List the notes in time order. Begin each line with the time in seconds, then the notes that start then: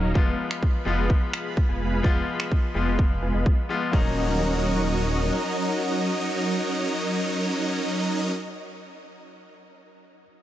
Already playing: D#1 F#3 A#3 C#4 D#4 F#4 A#4 C#5 D#5 F5 A#5
0.14 F1 F3 G#3 B3 F4 G#4 B4 F5 B5, kick
0.51 finger snap
0.63 kick
0.85 F1 F3 G#3 B3 F4 B4 D#5
1.10 kick
1.33 finger snap
1.57 kick
1.69 F1 G#3 B3 F4 B4 G#5
2.03 F3 G#3 B3 F4 B4 F5, kick
2.40 finger snap
2.52 kick
2.74 F1 F3 G#3 B3 F4 B4 D#5
2.99 kick
3.22 F1 G#3 B3 F4 B4 G#5
3.34 F1 G#3 B3 F4 B4 D#5
3.46 kick
3.69 F3 G#3 B3 F4
3.92 D#1 F#3 A#3 C#4 D#4 F#4 A#4 C#5 D#5 F#5, kick